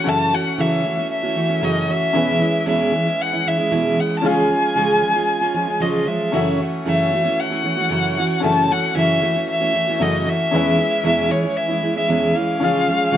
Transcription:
Already playing: upright piano E5, violin F#5
0.04 steel-string acoustic guitar F#2 C#3 E3 A3 C#4 F#4, upright piano C#4 F#4 A4
0.08 upright piano E5, violin A5
0.31 steel-string acoustic guitar E3 A3 C#4 F#4, violin F#5
0.58 steel-string acoustic guitar F#2 C#3 E3 A3 C#4 F#4, violin E5
0.83 steel-string acoustic guitar E3 A3 C#4 F#4
0.97 steel-string acoustic guitar E3 A3 C#4 F#4
1.11 violin E5
1.23 steel-string acoustic guitar E3 A3 C#4 F#4
1.35 steel-string acoustic guitar E3 A3 C#4 F#4
1.48 steel-string acoustic guitar E3 A3 C#4 F#4
1.61 steel-string acoustic guitar F#2 C#3 E3 A3 C#4 F#4, violin D#5
1.88 steel-string acoustic guitar E3 A3 C#4 F#4, violin E5
2.13 steel-string acoustic guitar E2 B2 E3 G#3 C#4 E4, upright piano C#4 G#4 B4 E5
2.39 steel-string acoustic guitar E3 G#3 C#4 E4
2.65 steel-string acoustic guitar E2 B2 E3 G#3 C#4 E4, violin E5
2.92 steel-string acoustic guitar E3 G#3 C#4 E4
3.06 steel-string acoustic guitar E3 G#3 C#4 E4
3.22 violin F#5
3.32 steel-string acoustic guitar E3 G#3 C#4 E4
3.45 steel-string acoustic guitar E3 G#3 C#4 E4, violin E5
3.58 steel-string acoustic guitar E3 G#3 C#4 E4
3.71 steel-string acoustic guitar E2 B2 E3 G#3 C#4 E4
3.97 steel-string acoustic guitar E3 G#3 C#4 E4, violin F#5
4.19 upright piano C#4, violin A5
4.23 steel-string acoustic guitar C#3 F3 G#3 C#4 F4, upright piano F4 G#4 F5, violin G#5
4.49 steel-string acoustic guitar F3 G#3 C#4 F4
4.75 steel-string acoustic guitar C#3 F3 G#3 C#4 F4
5.01 steel-string acoustic guitar F3 G#3 C#4 F4
5.15 steel-string acoustic guitar G#3 C#4 F4
5.41 steel-string acoustic guitar G#3 C#4 F4
5.54 steel-string acoustic guitar F3 G#3 C#4 F4
5.67 steel-string acoustic guitar G#3 C#4 F4
5.80 steel-string acoustic guitar C#3 F3 G#3 C#4 F4, violin D#5
6.06 steel-string acoustic guitar F3 G#3 C#4 F4, violin E5
6.32 steel-string acoustic guitar F#2 C#3 E3 A3 C#4 F#4, upright piano C#4 F#4 A4 E5
6.58 steel-string acoustic guitar E3 A3 C#4 F#4
6.85 steel-string acoustic guitar F#2 C#3 E3 A3 C#4 F#4, violin E5
7.11 steel-string acoustic guitar E3 A3 C#4 F#4
7.24 steel-string acoustic guitar E3 A3 C#4 F#4
7.40 violin F#5
7.50 steel-string acoustic guitar E3 A3 C#4 F#4
7.63 steel-string acoustic guitar E3 A3 C#4 F#4
7.77 steel-string acoustic guitar E3 A3 C#4 F#4
7.89 steel-string acoustic guitar F#2 C#3 E3 A3 C#4 F#4
8.17 steel-string acoustic guitar E3 A3 C#4 F#4
8.40 steel-string acoustic guitar F#2 C#3 E3 A3, upright piano C#4 F#4 A4, violin A5
8.44 steel-string acoustic guitar C#4 F#4, upright piano E5
8.69 steel-string acoustic guitar E3 A3 C#4 F#4, violin F#5
8.94 steel-string acoustic guitar F#2 C#3 E3 A3 C#4 F#4, violin E5
9.21 steel-string acoustic guitar E3 A3 C#4 F#4
9.34 steel-string acoustic guitar E3 A3 C#4 F#4
9.50 violin E5
9.60 steel-string acoustic guitar E3 A3 C#4 F#4
9.74 steel-string acoustic guitar E3 A3 C#4 F#4
9.87 steel-string acoustic guitar E3 A3 C#4 F#4
9.99 steel-string acoustic guitar F#2 C#3 E3 A3 C#4 F#4, upright piano C#4 F#4 A4 E5, violin D#5
10.26 steel-string acoustic guitar E3 A3 C#4 F#4, violin E5
10.51 steel-string acoustic guitar E2 B2 E3 G#3 C#4 E4, upright piano C#4 G#4 B4
10.55 upright piano E5
10.78 steel-string acoustic guitar E3 G#3 C#4 E4
11.03 steel-string acoustic guitar E2 B2 E3 G#3 C#4 E4, violin E5
11.29 steel-string acoustic guitar E3 G#3 C#4 E4, violin C#5
11.43 steel-string acoustic guitar E3 G#3 C#4 E4
11.57 violin E5
11.68 steel-string acoustic guitar E3 G#3 C#4 E4
11.81 steel-string acoustic guitar E3 G#3 C#4 E4
11.95 steel-string acoustic guitar E3 G#3 C#4 E4, violin E5
12.08 steel-string acoustic guitar E2 B2 E3 G#3 C#4 E4
12.33 steel-string acoustic guitar E3 G#3 C#4 E4, violin F5
12.60 steel-string acoustic guitar C#3 F3 G#3 C#4 F4, upright piano C#4 F4 G#4
12.64 upright piano F5
12.87 steel-string acoustic guitar F3 G#3 C#4 F4
13.12 steel-string acoustic guitar C#3 F3 G#3 C#4 F4

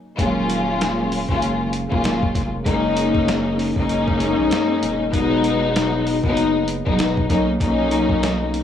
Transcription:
0.18 sub bass D#1, string section D#2 F#3 G#3 A#3 C#4 F4, kick, closed hi-hat
0.50 closed hi-hat
0.81 snare, closed hi-hat
1.12 open hi-hat
1.29 sub bass F#1, string section D#2 F#3 G#3 A#3 C#4 F4, kick
1.42 closed hi-hat
1.73 closed hi-hat
1.90 sub bass D#1, string section D#2 F#3 G#3 A#3 C#4 F4, kick
2.04 sub bass D#1, snare, closed hi-hat
2.23 kick
2.35 sub bass F1, kick, snare, closed hi-hat
2.66 sub bass F#1, string section F#2 G#3 A#3 C#4 D#4, kick, closed hi-hat
2.97 closed hi-hat
3.15 kick
3.28 snare, closed hi-hat
3.59 open hi-hat
3.76 sub bass F#1, string section F#2 G#3 A#3 C#4 D#4, kick
3.89 closed hi-hat
4.08 kick
4.20 closed hi-hat
4.39 sub bass A#1
4.51 snare, closed hi-hat
4.83 sub bass D#1, closed hi-hat
5.12 sub bass E1, string section F#3 G#3 B3 D#4, kick, closed hi-hat
5.44 closed hi-hat
5.76 snare, closed hi-hat
6.07 open hi-hat
6.24 sub bass F#1, string section F#3 G#3 B3 D#4, kick
6.37 closed hi-hat
6.68 closed hi-hat
6.86 sub bass E1, string section F#3 G#3 B3 D#4, kick
6.99 sub bass E1, snare, closed hi-hat
7.17 kick
7.29 sub bass B1, string section F#3 A#3 C#4 D#4, kick, snare, closed hi-hat
7.60 sub bass B1, string section F#3 A#3 C#4 D#4, kick, closed hi-hat
7.91 closed hi-hat
8.09 kick
8.23 snare, closed hi-hat
8.54 closed hi-hat

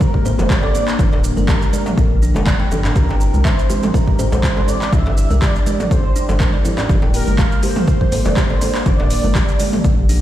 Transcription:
Already playing: analog synth pad D3 A#3 G4
0.00 analog synth lead A#4, kalimba A#4, kick, high conga, shaker
0.14 kick, low conga
0.25 kalimba C5, djembe tone, djembe bass, shaker
0.38 analog synth bass F1, analog synth lead C5, djembe slap, high conga, low conga, shaker
0.49 kalimba G4, analog synth lead D5, kick, clap, shaker
0.63 kalimba D5, djembe slap, djembe tone, high conga
0.75 kalimba D5, djembe tone, shaker
0.88 clap, shaker
0.99 analog synth bass G1, kalimba D4, analog synth lead A#4, kick, low conga, shaker
1.13 analog synth bass D1, kalimba D5, djembe slap
1.24 shaker
1.36 analog synth bass G1, kalimba A#4, djembe tone, high conga, shaker
1.48 kalimba G4, analog synth lead A#4, kick, clap, shaker
1.62 shaker
1.73 kalimba D5, high conga, shaker
1.86 mid tom, djembe slap, shaker
1.98 analog synth bass A#1, kick, djembe tone, shaker
2.22 kalimba D4, shaker
2.35 analog synth bass F1, djembe slap, high conga, low conga, shaker
2.47 kalimba D5, kick, clap, high conga, shaker
2.60 kalimba G5, high conga
2.71 analog synth bass G1, kalimba D4, djembe tone, low conga, shaker
2.85 kalimba D4, clap, djembe slap, djembe bass, shaker
2.96 analog synth bass C2, analog synth pad E3 C4, kalimba G4, analog synth lead A#4, kick, low conga, shaker
3.09 analog synth bass G1, kalimba G5, djembe slap
3.21 shaker
3.34 analog synth bass C2, high conga, shaker
3.44 analog synth lead C5, kalimba E5, kick, clap, shaker
3.59 shaker
3.70 kalimba G4, high conga, shaker
3.83 mid tom, djembe slap, low conga, shaker
3.94 analog synth lead A#4, kalimba A#4, kick, high conga, shaker
4.08 kick, low conga
4.19 kalimba C5, djembe tone, djembe bass, shaker
4.31 analog synth bass A#1, analog synth lead C5, djembe slap, high conga, low conga, shaker
4.43 kalimba G4, kick, clap, shaker
4.56 kalimba D5, djembe slap, high conga, djembe tone
4.68 kalimba D5, analog synth lead D5, djembe tone, shaker
4.82 clap, shaker
4.92 analog synth bass C2, kalimba D4, analog synth pad D4, analog synth lead E5, kick, low conga, shaker
5.06 analog synth bass G1, kalimba D5, djembe slap
5.17 shaker
5.30 analog synth bass C2, kalimba A#4, high conga, djembe tone, shaker
5.42 kalimba G4, analog synth lead D5, kick, clap, shaker
5.56 shaker
5.67 kalimba D5, high conga, shaker
5.80 mid tom, djembe slap, shaker
5.91 analog synth lead C5, kick, djembe tone, shaker
6.16 kalimba D4, shaker
6.29 analog synth bass G1, djembe slap, high conga, low conga, shaker
6.40 kalimba A#4, kick, clap, high conga, shaker
6.54 kalimba D5, high conga
6.65 kalimba E4, djembe tone, low conga, shaker
6.78 kalimba D5, clap, djembe slap, djembe bass, shaker
6.89 analog synth bass G1, analog synth pad D3 A#3, kalimba G4, kick, low conga, shaker
7.02 analog synth bass D1, kalimba G5, djembe slap
7.14 analog synth lead A#4, open hi-hat, shaker
7.27 analog synth bass G1, high conga, shaker
7.39 kalimba F5, kick, clap, shaker
7.52 shaker
7.63 kalimba G4, analog synth lead C5, open hi-hat, high conga, shaker
7.76 mid tom, djembe slap, low conga, shaker
7.87 kalimba A#4, kick, high conga, shaker
8.01 kick, low conga
8.12 kalimba C5, open hi-hat, djembe tone, djembe bass, shaker
8.25 analog synth bass F1, analog synth lead D5, djembe slap, high conga, low conga, shaker
8.37 kalimba G4, analog synth lead C5, kick, clap, shaker
8.49 kalimba D5, djembe slap, high conga, djembe tone
8.61 kalimba D5, open hi-hat, djembe tone, shaker
8.75 clap, shaker
8.86 analog synth bass G1, kalimba D4, analog synth lead D5, kick, low conga, shaker
8.99 analog synth bass D1, kalimba D5, djembe slap
9.10 open hi-hat, shaker
9.23 analog synth bass G1, kalimba A#4, djembe tone, high conga, shaker
9.35 kalimba G4, kick, clap, shaker
9.49 shaker
9.60 kalimba D5, open hi-hat, high conga, shaker
9.73 mid tom, djembe slap, shaker
9.84 analog synth bass A#1, kick, djembe tone, shaker
10.09 kalimba D4, open hi-hat, shaker

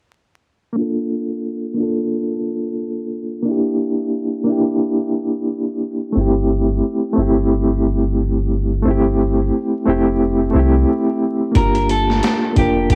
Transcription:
0.73 reed electric piano A#3 D4
0.78 reed electric piano F4 A4
1.74 reed electric piano A#3 D4
1.80 reed electric piano F4 A4
3.42 reed electric piano A#3 D4
3.48 reed electric piano E4 G4
4.44 reed electric piano A#3 D4
4.50 reed electric piano E4 G4
6.12 sub bass G1, reed electric piano A3 C4
6.18 reed electric piano E4 G4
7.13 reed electric piano A3 C4
7.17 sub bass G1, reed electric piano E4
7.22 reed electric piano G4
8.82 sub bass G1, reed electric piano A3 C4
8.88 reed electric piano E4 G4
9.85 sub bass F1, reed electric piano A3 C4 E4
9.89 reed electric piano G4
10.50 sub bass C2, reed electric piano A3 C4
10.56 reed electric piano E4 G4
11.52 sub bass G1, reed electric piano A#3 D4, kick, closed hi-hat
11.56 reed electric piano F4 G4, clean electric guitar A#4
11.75 closed hi-hat
11.89 clean electric guitar A4, closed hi-hat
12.10 snare
12.23 snare, closed hi-hat
12.53 sub bass F1, reed electric piano A#3 D4, kick, closed hi-hat
12.58 reed electric piano F4 A#4, clean electric guitar G4
12.90 clean electric guitar G4, kick, closed hi-hat

